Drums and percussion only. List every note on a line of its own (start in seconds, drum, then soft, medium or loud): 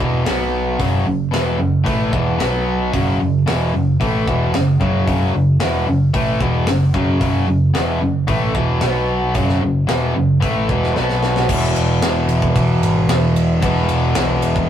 0.00 kick loud
0.26 snare loud
0.26 open hi-hat soft
0.80 kick medium
0.80 open hi-hat medium
1.34 snare loud
1.34 open hi-hat medium
1.86 kick medium
1.86 open hi-hat soft
2.13 kick loud
2.40 snare loud
2.40 open hi-hat medium
2.94 kick loud
2.94 open hi-hat medium
3.47 snare loud
3.47 open hi-hat soft
4.01 kick medium
4.01 open hi-hat soft
4.28 kick medium
4.54 snare medium
4.54 open hi-hat soft
4.81 kick medium
5.08 kick medium
5.08 open hi-hat medium
5.60 snare loud
5.60 open hi-hat medium
6.14 kick medium
6.14 open hi-hat medium
6.41 kick loud
6.67 snare loud
6.67 open hi-hat medium
6.94 kick medium
7.21 kick loud
7.21 open hi-hat medium
7.75 snare loud
7.75 open hi-hat medium
8.28 kick loud
8.28 open hi-hat soft
8.55 kick loud
8.81 snare loud
8.81 open hi-hat soft
9.35 kick loud
9.35 open hi-hat medium
9.49 snare soft
9.89 snare loud
9.89 open hi-hat medium
10.42 kick loud
10.42 open hi-hat medium
10.69 kick loud
10.83 snare soft
10.96 snare medium
11.10 snare medium
11.23 snare medium
11.36 snare medium
11.49 kick loud
11.49 crash loud
11.76 ride medium
12.02 snare loud
12.02 ride loud
12.29 ride medium
12.42 kick medium
12.56 kick medium
12.56 ride medium
12.83 ride medium
13.09 snare loud
13.09 ride medium
13.36 ride medium
13.62 kick loud
13.62 ride loud
13.89 ride medium
14.15 snare loud
14.15 ride loud
14.42 ride medium
14.56 kick medium